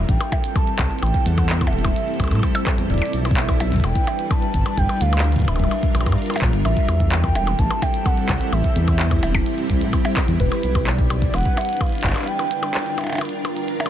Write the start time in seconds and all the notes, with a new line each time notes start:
Already playing: G3 C4 E4 A4 E5
0.09 A1 G5, kick, closed hi-hat
0.21 closed hi-hat, percussion blips
0.32 kick, percussion blips
0.44 closed hi-hat
0.56 A5, kick, closed hi-hat, percussion blips
0.67 closed hi-hat
0.79 C2, kick, clap, closed hi-hat, percussion blips
0.91 closed hi-hat
0.99 A1 G5, closed hi-hat
1.03 closed hi-hat, percussion blips
1.06 closed hi-hat
1.14 kick, closed hi-hat
1.26 E2 F#5, closed hi-hat
1.38 kick, closed hi-hat, percussion blips
1.49 clap, closed hi-hat
1.61 kick, closed hi-hat, percussion blips
1.67 closed hi-hat, percussion blips
1.73 E1 E5, closed hi-hat
1.79 closed hi-hat
1.84 kick, closed hi-hat, percussion blips
1.96 closed hi-hat
2.08 closed hi-hat
2.14 closed hi-hat
2.20 C2, kick, closed hi-hat, percussion blips
2.24 closed hi-hat, percussion blips
2.28 A2, closed hi-hat, percussion blips
2.31 percussion blips
2.35 percussion blips
2.39 kick, closed hi-hat, percussion blips
2.43 percussion blips
2.55 percussion blips
2.67 kick, clap, closed hi-hat, percussion blips
2.78 E2, closed hi-hat
2.90 E1 G3 D4 D5, kick, closed hi-hat
2.94 kick
2.98 kick, closed hi-hat
3.02 closed hi-hat, percussion blips
3.06 closed hi-hat
3.13 B1, closed hi-hat
3.25 closed hi-hat, percussion blips
3.31 kick
3.37 E5, clap, closed hi-hat
3.49 kick, closed hi-hat, percussion blips
3.60 B1, closed hi-hat, percussion blips
3.72 kick, closed hi-hat
3.76 kick
3.80 E1, kick, closed hi-hat, percussion blips
3.84 G5
3.95 kick, closed hi-hat
4.07 closed hi-hat, percussion blips
4.19 closed hi-hat
4.31 A5, kick, closed hi-hat, percussion blips
4.42 closed hi-hat
4.54 G1 F4 A#4 A5, kick, closed hi-hat
4.66 percussion blips
4.77 G1 G5, kick, closed hi-hat
4.89 closed hi-hat, percussion blips
5.01 D2 F5, closed hi-hat
5.13 closed hi-hat, percussion blips
5.18 clap
5.24 closed hi-hat
5.32 kick, closed hi-hat
5.36 kick, closed hi-hat
5.40 kick, closed hi-hat
5.45 D1, kick
5.48 E5, kick, closed hi-hat, percussion blips
5.51 kick
5.54 kick, percussion blips
5.57 kick
5.59 kick
5.64 percussion blips
5.71 closed hi-hat, percussion blips
5.83 kick, closed hi-hat
5.95 A#1, closed hi-hat, percussion blips
6.01 percussion blips
6.06 G2, kick, closed hi-hat, percussion blips
6.12 percussion blips
6.18 closed hi-hat
6.22 closed hi-hat
6.26 closed hi-hat
6.30 closed hi-hat, percussion blips
6.34 closed hi-hat, percussion blips
6.38 A#1, kick, clap, closed hi-hat
6.53 G1, closed hi-hat
6.65 A1 C4 E4 A4 E5, closed hi-hat, percussion blips
6.77 kick, closed hi-hat
6.88 E2, closed hi-hat, percussion blips
7.00 kick, closed hi-hat
7.12 G5, clap, closed hi-hat
7.24 kick, closed hi-hat, percussion blips
7.35 E1, closed hi-hat, percussion blips
7.47 percussion blips
7.59 A1 A5, kick, closed hi-hat
7.71 closed hi-hat, percussion blips
7.82 G5, kick, closed hi-hat, percussion blips
7.94 closed hi-hat
8.06 F#5, kick, closed hi-hat, percussion blips
8.17 closed hi-hat
8.29 C2, kick, clap, closed hi-hat, percussion blips
8.41 closed hi-hat
8.52 A1 G4 E5, closed hi-hat, percussion blips
8.64 kick, closed hi-hat
8.76 E2, closed hi-hat
8.88 kick, closed hi-hat, percussion blips
8.99 clap, closed hi-hat
9.11 kick, closed hi-hat, percussion blips
9.23 E1, closed hi-hat, percussion blips
9.34 kick, closed hi-hat, percussion blips
9.46 closed hi-hat
9.58 closed hi-hat
9.70 C2, kick, closed hi-hat
9.81 A2, closed hi-hat
9.93 kick, closed hi-hat, percussion blips
10.05 closed hi-hat, percussion blips
10.16 kick, clap, closed hi-hat, percussion blips
10.28 E2, closed hi-hat
10.40 E1 D4 B4, kick, closed hi-hat
10.52 closed hi-hat, percussion blips
10.63 B1, closed hi-hat
10.75 kick, closed hi-hat, percussion blips
10.87 D5, clap, closed hi-hat
10.99 kick, closed hi-hat
11.10 B1, closed hi-hat, percussion blips
11.22 kick, closed hi-hat
11.34 E1 F#5, closed hi-hat, percussion blips
11.36 closed hi-hat
11.38 closed hi-hat
11.41 closed hi-hat
11.43 kick, closed hi-hat
11.45 closed hi-hat
11.57 closed hi-hat, percussion blips
11.61 closed hi-hat
11.65 closed hi-hat
11.69 closed hi-hat
11.73 closed hi-hat
11.77 kick, closed hi-hat
11.81 F5, closed hi-hat, percussion blips
11.84 closed hi-hat
11.87 closed hi-hat
11.89 closed hi-hat
11.92 closed hi-hat
11.95 closed hi-hat
11.98 closed hi-hat
12.01 G1 F4 A#4, kick, clap, closed hi-hat
12.07 clap
12.10 clap
12.13 clap
12.16 clap, percussion blips
12.19 clap
12.22 clap
12.25 G5, clap, closed hi-hat
12.39 percussion blips
12.51 closed hi-hat
12.63 closed hi-hat, percussion blips
12.74 clap, closed hi-hat
12.86 closed hi-hat
12.98 closed hi-hat, percussion blips
13.01 percussion blips
13.04 percussion blips
13.07 closed hi-hat, percussion blips
13.10 percussion blips
13.12 closed hi-hat, percussion blips
13.15 closed hi-hat, percussion blips
13.18 closed hi-hat, percussion blips
13.21 closed hi-hat, percussion blips
13.29 closed hi-hat
13.45 closed hi-hat, percussion blips
13.57 closed hi-hat
13.68 closed hi-hat
13.80 closed hi-hat, percussion blips
13.86 closed hi-hat, percussion blips